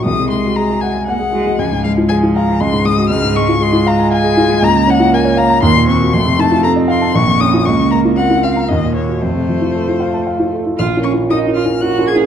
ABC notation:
X:1
M:3/4
L:1/16
Q:1/4=118
K:Db
V:1 name="Violin"
e'2 c'2 b2 a2 g4 | a2 f2 a2 b2 c'2 e'2 | f'2 d'2 c'2 b2 a4 | [K:Bbm] b2 g2 a2 b2 c'2 d'2 |
c'2 =a2 b2 c'2 d'2 e'2 | d'2 b2 g2 f2 e2 d2 | c8- c2 z2 | f'2 d'2 e'2 f'2 g'2 a'2 |]
V:2 name="Grand piano"
C,, C, A, G A G g a g A G A, | D,, A,, A, F A F f a D,, A,, A, G | D,, A,, A, F A F f a f A F A, | [K:Bbm] D,, D, D F B d f b E,, B,, C G |
F,, C, E F =A e f =a B,,, F,, D F | D,, D, B, F B F f b E,, B,, B, G | F,, C, F, F =A F f =a f F A F | (3B,,,2 [DFB]2 [DFB]2 (3[DFB]2 [DFB]2 [DFB]2 (3[DFB]2 [DFB]2 [DFB]2 |]
V:3 name="Cello"
A,8 B,2 A,2 | F,4 F,4 A,4 | A,4 A,8 | [K:Bbm] B,8 B,4 |
=A,4 C4 B,4 | B,4 C4 B,4 | =A,8- A,2 z2 | F2 D2 E2 F2 G2 A2 |]